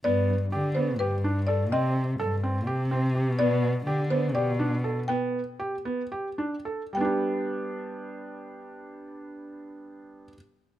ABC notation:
X:1
M:7/8
L:1/8
Q:1/4=120
K:G
V:1 name="Marimba"
d3 c B2 d | _e2 z4 z | d3 c d3 | g6 z |
g6- g- | g6- g |]
V:2 name="Felt piano"
B,2 G B, G D A | C2 A C G C G | B,2 G B, G D A | B,2 G B, G D A |
[G,B,DG]6- [G,B,DG]- | [G,B,DG]6- [G,B,DG] |]
V:3 name="Cello" clef=bass
G,,2 D,2 G,,3 | C,2 G,,2 C,3 | B,,2 D,2 B,,3 | z6 z |
z6 z | z6 z |]